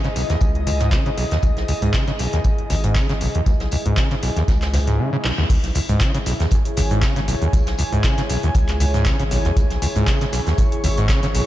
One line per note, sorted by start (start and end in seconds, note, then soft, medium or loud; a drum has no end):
0.00 4.99 E4 medium
0.00 4.99 G#4 medium
0.00 4.99 D#5 medium
0.00 4.99 G#5 medium
0.04 0.08 C#3 loud
0.04 snare medium
0.04 closed hi-hat soft
0.16 0.24 B1 medium
0.16 open hi-hat medium
0.16 tambourine medium
0.30 0.36 D#2 loud
0.30 snare soft
0.30 closed hi-hat medium
0.41 0.98 C#2 loud
0.41 0.46 C#2 medium
0.41 kick loud
0.41 closed hi-hat medium
0.41 tambourine medium
0.55 closed hi-hat soft
0.67 0.71 C#2 loud
0.67 open hi-hat loud
0.67 tambourine medium
0.80 0.94 G#2 medium
0.80 snare soft
0.80 closed hi-hat medium
0.92 1.04 C#3 loud
0.92 kick loud
0.92 snare loud
0.92 clap loud
0.92 closed hi-hat medium
0.92 tambourine medium
1.06 1.10 C#3 loud
1.06 closed hi-hat soft
1.18 1.25 B1 medium
1.18 open hi-hat medium
1.18 tambourine medium
1.31 1.38 D#2 loud
1.31 snare medium
1.31 closed hi-hat soft
1.43 1.52 C#2 loud
1.43 1.48 C#2 medium
1.43 kick loud
1.43 closed hi-hat medium
1.43 tambourine medium
1.57 1.64 B1 medium
1.57 snare soft
1.57 closed hi-hat soft
1.68 1.73 C#2 loud
1.68 open hi-hat loud
1.68 tambourine medium
1.82 1.90 C#2 medium
1.82 1.95 G#2 medium
1.82 closed hi-hat medium
1.82 closed hi-hat soft
1.94 2.05 C#3 loud
1.94 kick loud
1.94 snare loud
1.94 clap loud
1.94 closed hi-hat medium
1.94 tambourine medium
2.07 2.12 C#3 loud
2.07 snare medium
2.07 closed hi-hat soft
2.19 2.27 B1 medium
2.19 open hi-hat medium
2.19 tambourine medium
2.33 2.40 D#2 loud
2.33 snare soft
2.33 closed hi-hat medium
2.44 2.49 C#2 medium
2.44 kick loud
2.44 closed hi-hat medium
2.44 tambourine medium
2.58 closed hi-hat soft
2.70 3.27 G#1 medium
2.70 2.75 C#2 loud
2.70 snare soft
2.70 open hi-hat loud
2.70 tambourine medium
2.84 2.97 G#2 medium
2.84 closed hi-hat soft
2.84 closed hi-hat medium
2.95 3.07 C#3 loud
2.95 kick loud
2.95 snare loud
2.95 clap loud
2.95 closed hi-hat medium
2.95 tambourine medium
3.09 3.13 C#3 loud
3.09 snare medium
3.09 closed hi-hat soft
3.21 3.29 B1 medium
3.21 open hi-hat medium
3.21 tambourine medium
3.35 3.41 D#2 loud
3.35 closed hi-hat medium
3.46 3.55 C#2 loud
3.46 3.51 C#2 medium
3.46 kick loud
3.46 closed hi-hat medium
3.46 tambourine medium
3.60 3.68 B1 medium
3.60 snare medium
3.60 closed hi-hat soft
3.71 3.77 C#2 loud
3.71 open hi-hat loud
3.71 tambourine medium
3.86 3.93 C#2 medium
3.86 3.99 G#2 medium
3.86 closed hi-hat medium
3.97 4.09 C#3 loud
3.97 kick loud
3.97 snare loud
3.97 clap loud
3.97 closed hi-hat medium
3.97 tambourine medium
4.11 4.15 C#3 loud
4.11 snare medium
4.11 closed hi-hat soft
4.23 4.30 B1 medium
4.23 open hi-hat medium
4.23 tambourine medium
4.37 4.43 D#2 loud
4.37 snare soft
4.37 closed hi-hat medium
4.48 4.99 C#2 loud
4.48 4.53 C#2 medium
4.48 kick loud
4.48 snare loud
4.48 closed hi-hat medium
4.48 tambourine medium
4.62 snare loud
4.62 clap soft
4.62 closed hi-hat soft
4.62 tambourine medium
4.74 4.78 C#2 loud
4.74 snare loud
4.74 open hi-hat loud
4.74 tambourine medium
4.87 5.01 G#2 medium
4.87 snare soft
4.87 closed hi-hat medium
4.99 5.10 C#3 loud
5.13 5.17 C#3 loud
5.24 5.32 B1 medium
5.24 clap medium
5.38 5.45 D#2 loud
5.50 5.54 C#2 medium
5.50 5.59 C#2 loud
5.50 11.46 E4 medium
5.50 kick loud
5.50 closed hi-hat medium
5.50 crash loud
5.50 tambourine medium
5.50 cabasa soft
5.63 5.71 B1 medium
5.63 snare soft
5.63 closed hi-hat medium
5.63 cabasa soft
5.75 5.80 C#2 loud
5.75 open hi-hat loud
5.75 tambourine medium
5.75 cabasa medium
5.89 5.97 C#2 medium
5.89 6.02 G#2 medium
5.89 closed hi-hat soft
5.89 cabasa soft
6.00 6.12 C#3 loud
6.00 11.46 G#4 medium
6.00 kick loud
6.00 snare loud
6.00 clap loud
6.00 closed hi-hat medium
6.00 tambourine medium
6.00 cabasa soft
6.14 6.18 C#3 loud
6.14 snare medium
6.14 closed hi-hat medium
6.14 cabasa soft
6.25 6.34 B1 medium
6.25 10.35 G#5 medium
6.25 open hi-hat medium
6.25 tambourine medium
6.25 cabasa medium
6.40 6.46 D#2 loud
6.40 11.46 C#5 medium
6.40 snare soft
6.40 closed hi-hat soft
6.40 cabasa soft
6.51 6.56 C#2 medium
6.51 kick loud
6.51 closed hi-hat medium
6.51 tambourine medium
6.51 cabasa soft
6.65 closed hi-hat medium
6.65 cabasa soft
6.76 7.34 G#1 medium
6.76 6.82 C#2 loud
6.76 snare soft
6.76 open hi-hat loud
6.76 tambourine medium
6.76 cabasa medium
6.91 7.04 G#2 medium
6.91 closed hi-hat soft
6.91 cabasa soft
7.02 7.14 C#3 loud
7.02 kick loud
7.02 snare loud
7.02 clap loud
7.02 closed hi-hat medium
7.02 tambourine medium
7.02 cabasa soft
7.16 7.20 C#3 loud
7.16 snare medium
7.16 closed hi-hat medium
7.16 cabasa soft
7.28 7.35 B1 medium
7.28 open hi-hat medium
7.28 tambourine medium
7.28 cabasa medium
7.42 7.48 D#2 loud
7.42 closed hi-hat soft
7.42 cabasa soft
7.53 7.62 C#2 loud
7.53 7.58 C#2 medium
7.53 kick loud
7.53 closed hi-hat medium
7.53 tambourine medium
7.53 cabasa soft
7.67 7.75 B1 medium
7.67 snare medium
7.67 closed hi-hat medium
7.67 cabasa soft
7.78 7.83 C#2 loud
7.78 open hi-hat loud
7.78 tambourine medium
7.78 cabasa medium
7.92 8.00 C#2 medium
7.92 8.06 G#2 medium
7.92 closed hi-hat soft
7.92 cabasa soft
8.04 8.15 C#3 loud
8.04 kick loud
8.04 snare loud
8.04 clap loud
8.04 closed hi-hat medium
8.04 tambourine medium
8.04 cabasa soft
8.18 8.22 C#3 loud
8.18 snare medium
8.18 closed hi-hat medium
8.18 cabasa soft
8.29 8.37 B1 medium
8.29 open hi-hat loud
8.29 tambourine medium
8.29 cabasa medium
8.43 8.50 D#2 loud
8.43 closed hi-hat soft
8.43 cabasa soft
8.55 9.12 C#2 loud
8.55 8.60 C#2 medium
8.55 kick loud
8.55 closed hi-hat medium
8.55 tambourine medium
8.55 cabasa soft
8.68 snare soft
8.68 clap soft
8.68 closed hi-hat medium
8.68 cabasa soft
8.80 8.85 C#2 loud
8.80 open hi-hat loud
8.80 tambourine medium
8.80 cabasa medium
8.94 9.07 G#2 medium
8.94 snare soft
8.94 closed hi-hat soft
8.94 cabasa soft
9.05 9.17 C#3 loud
9.05 kick loud
9.05 snare loud
9.05 clap loud
9.05 closed hi-hat medium
9.05 tambourine medium
9.05 cabasa soft
9.20 9.50 G#1 medium
9.20 9.23 C#3 loud
9.20 closed hi-hat medium
9.20 cabasa soft
9.31 9.39 B1 medium
9.31 open hi-hat loud
9.31 tambourine medium
9.31 cabasa medium
9.45 9.51 D#2 loud
9.45 snare medium
9.45 closed hi-hat soft
9.45 cabasa soft
9.57 9.66 C#2 loud
9.57 9.61 C#2 medium
9.57 kick loud
9.57 closed hi-hat medium
9.57 tambourine medium
9.57 cabasa soft
9.70 9.78 B1 medium
9.70 snare soft
9.70 closed hi-hat medium
9.70 cabasa soft
9.82 9.87 C#2 loud
9.82 open hi-hat loud
9.82 tambourine medium
9.82 cabasa medium
9.95 10.03 C#2 medium
9.95 10.09 G#2 medium
9.95 closed hi-hat soft
9.95 cabasa soft
10.07 10.19 C#3 loud
10.07 kick loud
10.07 snare loud
10.07 clap loud
10.07 closed hi-hat medium
10.07 tambourine medium
10.07 cabasa soft
10.21 10.25 C#3 loud
10.21 snare medium
10.21 closed hi-hat medium
10.21 cabasa soft
10.32 10.40 B1 medium
10.32 11.46 C#6 medium
10.32 open hi-hat loud
10.32 tambourine medium
10.32 cabasa medium
10.47 10.53 D#2 loud
10.47 snare soft
10.47 closed hi-hat soft
10.47 cabasa soft
10.58 10.63 C#2 medium
10.58 kick loud
10.58 closed hi-hat medium
10.58 tambourine medium
10.58 cabasa soft
10.72 closed hi-hat medium
10.72 cabasa soft
10.84 11.41 G#1 medium
10.84 10.88 C#2 loud
10.84 snare soft
10.84 open hi-hat loud
10.84 tambourine medium
10.84 cabasa medium
10.97 11.11 G#2 medium
10.97 closed hi-hat soft
10.97 cabasa soft
11.09 11.21 C#3 loud
11.09 kick loud
11.09 snare loud
11.09 clap loud
11.09 closed hi-hat medium
11.09 tambourine loud
11.09 cabasa soft
11.23 11.27 C#3 loud
11.23 snare medium
11.23 closed hi-hat soft
11.23 cabasa soft
11.35 11.42 B1 medium
11.35 open hi-hat loud
11.35 tambourine medium
11.35 cabasa medium